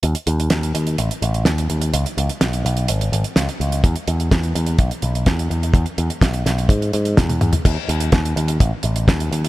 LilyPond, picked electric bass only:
\new Staff \with { instrumentName = "Picked electric bass" } { \clef bass \time 4/4 \key e \major \tempo 4 = 126 dis,8 dis,8 dis,8 dis,8 a,,8 a,,8 dis,8 dis,8 | cis,8 cis,8 b,,8 b,,8 gis,,8 gis,,8 cis,8 cis,8 | e,8 e,8 e,8 e,8 b,,8 b,,8 e,8 e,8 | e,8 e,8 b,,8 b,,8 gis,8 gis,8 e,8 e,8 |
dis,8 dis,8 dis,8 dis,8 a,,8 a,,8 dis,8 dis,8 | }